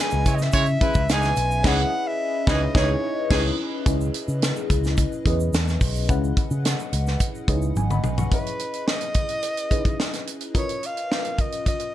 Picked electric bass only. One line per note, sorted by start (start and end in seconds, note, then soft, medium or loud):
0.13 0.23 C#2 medium
0.26 0.48 C#3 medium
0.54 0.76 C#3 loud
0.95 1.06 C#2 medium
1.10 1.32 C#2 medium
1.37 1.64 B1 loud
1.64 1.83 C#2 loud
2.47 2.66 C#2 loud
2.75 2.94 C#2 loud
3.31 3.49 C#2 medium
3.86 4.09 C#2 loud
4.28 4.51 C#3 medium
4.70 5.04 C#2 medium
5.26 5.48 E2 medium
5.53 5.76 E2 medium
5.81 6.09 B1 medium
6.09 6.32 C#2 loud
6.51 6.73 C#3 medium
6.93 7.15 C#2 medium
7.48 7.71 C#2 medium
7.76 7.98 G#1 medium
8.03 8.26 B1 medium